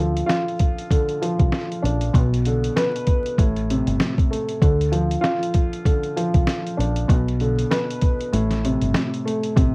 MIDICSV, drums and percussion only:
0, 0, Header, 1, 2, 480
1, 0, Start_track
1, 0, Tempo, 618557
1, 1663, Time_signature, 4, 2, 24, 8
1, 7565, End_track
2, 0, Start_track
2, 0, Title_t, "Drums"
2, 128, Note_on_c, 9, 42, 61
2, 206, Note_off_c, 9, 42, 0
2, 227, Note_on_c, 9, 38, 99
2, 236, Note_on_c, 9, 42, 89
2, 305, Note_off_c, 9, 38, 0
2, 313, Note_off_c, 9, 42, 0
2, 374, Note_on_c, 9, 42, 58
2, 452, Note_off_c, 9, 42, 0
2, 460, Note_on_c, 9, 42, 74
2, 464, Note_on_c, 9, 36, 94
2, 538, Note_off_c, 9, 42, 0
2, 542, Note_off_c, 9, 36, 0
2, 609, Note_on_c, 9, 42, 53
2, 687, Note_off_c, 9, 42, 0
2, 703, Note_on_c, 9, 36, 93
2, 709, Note_on_c, 9, 42, 88
2, 781, Note_off_c, 9, 36, 0
2, 787, Note_off_c, 9, 42, 0
2, 844, Note_on_c, 9, 42, 43
2, 922, Note_off_c, 9, 42, 0
2, 952, Note_on_c, 9, 42, 77
2, 1030, Note_off_c, 9, 42, 0
2, 1082, Note_on_c, 9, 36, 91
2, 1083, Note_on_c, 9, 42, 53
2, 1160, Note_off_c, 9, 36, 0
2, 1160, Note_off_c, 9, 42, 0
2, 1181, Note_on_c, 9, 38, 114
2, 1196, Note_on_c, 9, 42, 84
2, 1259, Note_off_c, 9, 38, 0
2, 1274, Note_off_c, 9, 42, 0
2, 1333, Note_on_c, 9, 42, 51
2, 1410, Note_off_c, 9, 42, 0
2, 1438, Note_on_c, 9, 42, 72
2, 1516, Note_off_c, 9, 42, 0
2, 1560, Note_on_c, 9, 42, 57
2, 1638, Note_off_c, 9, 42, 0
2, 1662, Note_on_c, 9, 36, 120
2, 1667, Note_on_c, 9, 42, 89
2, 1740, Note_off_c, 9, 36, 0
2, 1745, Note_off_c, 9, 42, 0
2, 1814, Note_on_c, 9, 42, 55
2, 1891, Note_off_c, 9, 42, 0
2, 1904, Note_on_c, 9, 42, 72
2, 1981, Note_off_c, 9, 42, 0
2, 2048, Note_on_c, 9, 42, 62
2, 2125, Note_off_c, 9, 42, 0
2, 2146, Note_on_c, 9, 38, 98
2, 2155, Note_on_c, 9, 42, 93
2, 2224, Note_off_c, 9, 38, 0
2, 2233, Note_off_c, 9, 42, 0
2, 2294, Note_on_c, 9, 42, 57
2, 2372, Note_off_c, 9, 42, 0
2, 2380, Note_on_c, 9, 42, 73
2, 2384, Note_on_c, 9, 36, 92
2, 2457, Note_off_c, 9, 42, 0
2, 2461, Note_off_c, 9, 36, 0
2, 2528, Note_on_c, 9, 42, 53
2, 2605, Note_off_c, 9, 42, 0
2, 2623, Note_on_c, 9, 36, 95
2, 2628, Note_on_c, 9, 42, 87
2, 2701, Note_off_c, 9, 36, 0
2, 2706, Note_off_c, 9, 42, 0
2, 2764, Note_on_c, 9, 42, 43
2, 2841, Note_off_c, 9, 42, 0
2, 2871, Note_on_c, 9, 42, 79
2, 2949, Note_off_c, 9, 42, 0
2, 3002, Note_on_c, 9, 42, 55
2, 3080, Note_off_c, 9, 42, 0
2, 3101, Note_on_c, 9, 38, 118
2, 3116, Note_on_c, 9, 42, 85
2, 3179, Note_off_c, 9, 38, 0
2, 3194, Note_off_c, 9, 42, 0
2, 3243, Note_on_c, 9, 36, 94
2, 3252, Note_on_c, 9, 42, 50
2, 3320, Note_off_c, 9, 36, 0
2, 3330, Note_off_c, 9, 42, 0
2, 3359, Note_on_c, 9, 42, 72
2, 3437, Note_off_c, 9, 42, 0
2, 3480, Note_on_c, 9, 42, 55
2, 3558, Note_off_c, 9, 42, 0
2, 3582, Note_on_c, 9, 36, 118
2, 3588, Note_on_c, 9, 42, 85
2, 3660, Note_off_c, 9, 36, 0
2, 3665, Note_off_c, 9, 42, 0
2, 3733, Note_on_c, 9, 42, 55
2, 3811, Note_off_c, 9, 42, 0
2, 3824, Note_on_c, 9, 42, 68
2, 3902, Note_off_c, 9, 42, 0
2, 3968, Note_on_c, 9, 42, 62
2, 4045, Note_off_c, 9, 42, 0
2, 4067, Note_on_c, 9, 38, 101
2, 4076, Note_on_c, 9, 42, 89
2, 4144, Note_off_c, 9, 38, 0
2, 4153, Note_off_c, 9, 42, 0
2, 4214, Note_on_c, 9, 42, 60
2, 4291, Note_off_c, 9, 42, 0
2, 4300, Note_on_c, 9, 42, 77
2, 4304, Note_on_c, 9, 36, 92
2, 4377, Note_off_c, 9, 42, 0
2, 4382, Note_off_c, 9, 36, 0
2, 4448, Note_on_c, 9, 42, 53
2, 4525, Note_off_c, 9, 42, 0
2, 4543, Note_on_c, 9, 36, 93
2, 4548, Note_on_c, 9, 42, 86
2, 4621, Note_off_c, 9, 36, 0
2, 4626, Note_off_c, 9, 42, 0
2, 4683, Note_on_c, 9, 42, 42
2, 4760, Note_off_c, 9, 42, 0
2, 4791, Note_on_c, 9, 42, 78
2, 4868, Note_off_c, 9, 42, 0
2, 4921, Note_on_c, 9, 42, 56
2, 4922, Note_on_c, 9, 36, 89
2, 4999, Note_off_c, 9, 42, 0
2, 5000, Note_off_c, 9, 36, 0
2, 5021, Note_on_c, 9, 38, 115
2, 5036, Note_on_c, 9, 42, 85
2, 5098, Note_off_c, 9, 38, 0
2, 5113, Note_off_c, 9, 42, 0
2, 5172, Note_on_c, 9, 42, 51
2, 5249, Note_off_c, 9, 42, 0
2, 5278, Note_on_c, 9, 42, 73
2, 5356, Note_off_c, 9, 42, 0
2, 5401, Note_on_c, 9, 42, 57
2, 5478, Note_off_c, 9, 42, 0
2, 5502, Note_on_c, 9, 36, 116
2, 5507, Note_on_c, 9, 42, 89
2, 5580, Note_off_c, 9, 36, 0
2, 5585, Note_off_c, 9, 42, 0
2, 5653, Note_on_c, 9, 42, 57
2, 5730, Note_off_c, 9, 42, 0
2, 5743, Note_on_c, 9, 42, 68
2, 5821, Note_off_c, 9, 42, 0
2, 5887, Note_on_c, 9, 42, 61
2, 5965, Note_off_c, 9, 42, 0
2, 5986, Note_on_c, 9, 38, 100
2, 5995, Note_on_c, 9, 42, 90
2, 6063, Note_off_c, 9, 38, 0
2, 6072, Note_off_c, 9, 42, 0
2, 6134, Note_on_c, 9, 42, 60
2, 6211, Note_off_c, 9, 42, 0
2, 6219, Note_on_c, 9, 42, 72
2, 6224, Note_on_c, 9, 36, 92
2, 6296, Note_off_c, 9, 42, 0
2, 6302, Note_off_c, 9, 36, 0
2, 6367, Note_on_c, 9, 42, 53
2, 6445, Note_off_c, 9, 42, 0
2, 6468, Note_on_c, 9, 42, 89
2, 6545, Note_off_c, 9, 42, 0
2, 6602, Note_on_c, 9, 38, 38
2, 6603, Note_on_c, 9, 42, 42
2, 6679, Note_off_c, 9, 38, 0
2, 6681, Note_off_c, 9, 42, 0
2, 6711, Note_on_c, 9, 42, 77
2, 6788, Note_off_c, 9, 42, 0
2, 6841, Note_on_c, 9, 42, 53
2, 6919, Note_off_c, 9, 42, 0
2, 6941, Note_on_c, 9, 38, 112
2, 6956, Note_on_c, 9, 42, 86
2, 7019, Note_off_c, 9, 38, 0
2, 7034, Note_off_c, 9, 42, 0
2, 7092, Note_on_c, 9, 42, 50
2, 7170, Note_off_c, 9, 42, 0
2, 7199, Note_on_c, 9, 42, 69
2, 7277, Note_off_c, 9, 42, 0
2, 7322, Note_on_c, 9, 42, 55
2, 7399, Note_off_c, 9, 42, 0
2, 7423, Note_on_c, 9, 36, 122
2, 7428, Note_on_c, 9, 42, 91
2, 7500, Note_off_c, 9, 36, 0
2, 7506, Note_off_c, 9, 42, 0
2, 7565, End_track
0, 0, End_of_file